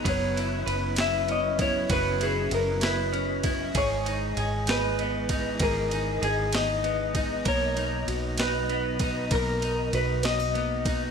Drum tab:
RD |xxxxxx|xxxxxx|xxxxxx|xxxxxx|
SD |---o--|---o--|---o--|---o--|
BD |o----o|o----o|o----o|o----o|

RD |xxxxxx|xxxxxx|
SD |---o--|---o--|
BD |o----o|o----o|